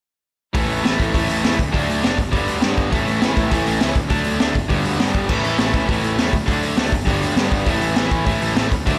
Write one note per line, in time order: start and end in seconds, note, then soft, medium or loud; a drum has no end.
0.53 0.67 A1 medium
0.53 0.84 A2 medium
0.53 0.84 E3 medium
0.53 0.83 A3 loud
0.53 0.83 C#4 loud
0.53 0.82 E4 loud
0.53 kick loud
0.53 open hi-hat medium
0.68 0.82 A1 medium
0.68 open hi-hat medium
0.83 0.97 A1 medium
0.83 1.11 A2 medium
0.83 1.12 E3 medium
0.83 1.13 A3 medium
0.83 1.13 C#4 loud
0.83 1.14 E4 loud
0.83 snare loud
0.83 open hi-hat medium
1.00 1.13 A1 medium
1.00 kick medium
1.00 open hi-hat medium
1.13 1.28 A1 medium
1.13 1.44 A2 medium
1.13 1.44 E3 loud
1.13 1.43 A3 loud
1.13 1.43 C#4 loud
1.13 1.42 E4 loud
1.13 kick loud
1.13 open hi-hat medium
1.29 1.42 A1 medium
1.29 open hi-hat medium
1.43 1.57 E2 medium
1.43 1.58 A2 medium
1.43 1.58 E3 medium
1.43 1.58 A3 medium
1.43 1.58 C#4 medium
1.43 1.57 E4 loud
1.43 snare loud
1.43 open hi-hat medium
1.59 1.73 D2 medium
1.59 kick medium
1.59 open hi-hat medium
1.72 1.88 D2 medium
1.72 2.03 D3 medium
1.72 2.02 F#3 medium
1.72 2.02 A3 loud
1.72 2.01 D4 loud
1.72 kick medium
1.72 open hi-hat medium
1.89 2.02 D2 medium
1.89 open hi-hat medium
2.02 2.17 F#1 loud
2.02 2.17 D3 medium
2.02 2.17 F#3 medium
2.02 2.17 A3 loud
2.02 2.16 D4 loud
2.02 snare loud
2.02 open hi-hat medium
2.18 2.31 G1 medium
2.18 kick medium
2.18 open hi-hat medium
2.31 2.46 G1 medium
2.31 2.62 G2 medium
2.31 2.62 D3 medium
2.31 2.61 G3 loud
2.31 2.60 B3 loud
2.31 2.60 D4 loud
2.31 kick medium
2.31 open hi-hat medium
2.48 2.62 D2 medium
2.48 open hi-hat medium
2.61 2.76 G2 medium
2.61 2.90 G2 medium
2.61 2.91 D3 medium
2.61 2.91 G3 medium
2.61 2.91 B3 loud
2.61 2.90 D4 loud
2.61 snare loud
2.61 open hi-hat medium
2.77 2.91 G1 medium
2.77 kick medium
2.77 open hi-hat medium
2.90 3.06 A1 medium
2.90 3.20 A2 loud
2.90 3.20 E3 medium
2.90 3.19 A3 loud
2.90 3.19 C#4 loud
2.90 3.18 E4 loud
2.90 kick loud
2.90 open hi-hat medium
3.08 3.21 A1 medium
3.08 open hi-hat medium
3.19 3.36 A1 medium
3.19 3.47 A2 medium
3.19 3.48 E3 medium
3.19 3.49 A3 medium
3.19 3.50 C#4 loud
3.19 3.50 E4 loud
3.19 snare loud
3.19 open hi-hat medium
3.37 3.51 A1 medium
3.37 kick medium
3.37 open hi-hat medium
3.48 3.65 A1 loud
3.48 3.80 A2 loud
3.48 3.79 E3 loud
3.48 3.79 A3 loud
3.48 3.78 C#4 loud
3.48 3.77 E4 loud
3.48 kick loud
3.48 open hi-hat medium
3.66 3.80 A1 medium
3.66 open hi-hat medium
3.79 3.95 C#2 medium
3.79 3.95 A2 medium
3.79 3.95 E3 medium
3.79 3.94 A3 medium
3.79 3.94 C#4 medium
3.79 3.94 E4 loud
3.79 snare loud
3.79 open hi-hat medium
3.95 4.09 D2 medium
3.95 kick medium
3.95 open hi-hat medium
4.08 4.24 D2 medium
4.08 4.40 D3 medium
4.08 4.39 F#3 medium
4.08 4.38 A3 medium
4.08 4.37 D4 loud
4.08 kick loud
4.08 open hi-hat medium
4.24 4.40 D2 medium
4.24 open hi-hat medium
4.39 4.54 D2 medium
4.39 4.55 D3 medium
4.39 4.54 F#3 medium
4.39 4.54 A3 loud
4.39 4.53 D4 loud
4.39 snare loud
4.39 open hi-hat medium
4.55 4.69 G1 medium
4.55 kick medium
4.55 open hi-hat medium
4.69 4.83 G1 medium
4.69 5.01 G2 loud
4.69 5.00 D3 loud
4.69 4.99 G3 loud
4.69 4.98 B3 loud
4.69 4.98 D4 loud
4.69 kick medium
4.69 open hi-hat medium
4.84 4.98 D2 medium
4.84 open hi-hat medium
4.99 5.13 G2 medium
4.99 5.28 G2 medium
4.99 5.29 D3 medium
4.99 5.29 G3 medium
4.99 5.28 B3 loud
4.99 5.28 D4 loud
4.99 snare loud
4.99 open hi-hat medium
5.14 5.28 G1 medium
5.14 kick medium
5.14 open hi-hat medium
5.28 5.43 A1 medium
5.28 5.59 A2 medium
5.28 5.58 E3 medium
5.28 5.58 A3 medium
5.28 5.57 C#4 loud
5.28 5.57 E4 medium
5.28 kick loud
5.28 crash medium
5.44 5.58 A1 medium
5.44 open hi-hat medium
5.58 5.73 A1 medium
5.58 5.87 A2 medium
5.58 5.87 E3 medium
5.58 5.88 A3 loud
5.58 5.88 C#4 loud
5.58 5.88 E4 loud
5.58 snare loud
5.58 open hi-hat medium
5.74 5.87 A1 medium
5.74 kick medium
5.74 open hi-hat medium
5.88 6.02 A1 medium
5.88 6.18 A2 loud
5.88 6.18 E3 loud
5.88 6.17 A3 loud
5.88 6.17 C#4 loud
5.88 6.16 E4 loud
5.88 kick loud
5.88 open hi-hat medium
6.03 6.17 A1 medium
6.03 open hi-hat medium
6.17 6.32 E2 medium
6.17 6.33 A2 medium
6.17 6.33 E3 medium
6.17 6.32 A3 loud
6.17 6.32 C#4 loud
6.17 6.32 E4 loud
6.17 snare loud
6.17 open hi-hat medium
6.33 6.47 D2 medium
6.33 kick medium
6.33 open hi-hat medium
6.47 6.62 D2 medium
6.47 6.78 D3 medium
6.47 6.78 F#3 medium
6.47 6.77 A3 medium
6.47 6.76 D4 loud
6.47 kick medium
6.47 open hi-hat medium
6.62 6.76 D2 medium
6.62 open hi-hat medium
6.77 6.91 D2 medium
6.77 6.92 D3 medium
6.77 6.92 F#3 medium
6.77 6.92 A3 loud
6.77 6.92 D4 loud
6.77 snare loud
6.77 open hi-hat medium
6.92 7.06 G1 medium
6.92 kick medium
6.92 open hi-hat medium
7.07 7.21 G1 medium
7.07 7.38 G2 loud
7.07 7.37 D3 loud
7.07 7.37 G3 loud
7.07 7.37 B3 loud
7.07 7.36 D4 loud
7.07 kick loud
7.07 open hi-hat medium
7.22 7.35 D2 medium
7.22 open hi-hat medium
7.37 7.51 G2 loud
7.37 7.66 G2 medium
7.37 7.66 D3 medium
7.37 7.67 G3 loud
7.37 7.66 B3 loud
7.37 7.66 D4 loud
7.37 snare loud
7.37 open hi-hat medium
7.51 7.66 G1 medium
7.51 kick medium
7.51 open hi-hat medium
7.66 7.80 A1 medium
7.66 7.97 A2 medium
7.66 7.97 E3 loud
7.66 7.96 A3 loud
7.66 7.96 C#4 medium
7.66 7.95 E4 loud
7.66 kick medium
7.66 open hi-hat medium
7.81 7.95 A1 medium
7.81 open hi-hat medium
7.96 8.10 A1 medium
7.96 8.25 A2 medium
7.96 8.25 E3 medium
7.96 8.26 A3 loud
7.96 8.27 C#4 loud
7.96 8.27 E4 loud
7.96 snare loud
7.96 open hi-hat medium
8.11 8.25 A1 medium
8.11 kick medium
8.11 open hi-hat medium
8.26 8.40 A1 medium
8.26 8.57 A2 medium
8.26 8.56 E3 loud
8.26 8.56 A3 loud
8.26 8.55 C#4 loud
8.26 8.55 E4 loud
8.26 kick loud
8.26 open hi-hat medium
8.41 8.55 A1 medium
8.41 open hi-hat medium
8.56 8.70 A1 loud
8.56 8.71 A2 medium
8.56 8.71 E3 loud
8.56 8.70 A3 medium
8.56 8.70 C#4 loud
8.56 8.70 E4 loud
8.56 snare loud
8.56 open hi-hat medium
8.71 8.85 D2 medium
8.71 kick medium
8.71 open hi-hat medium
8.86 8.99 D2 loud
8.86 8.99 D3 medium
8.86 8.99 F#3 loud
8.86 8.99 A3 loud
8.86 8.99 D4 loud
8.86 kick loud
8.86 open hi-hat medium